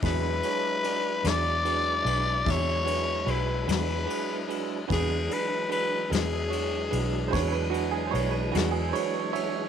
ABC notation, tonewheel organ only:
X:1
M:12/8
L:1/8
Q:3/8=49
K:Emix
V:1 name="Tonewheel organ" clef=bass
[F,G,DE]12 | [E,F,G,D]12 |]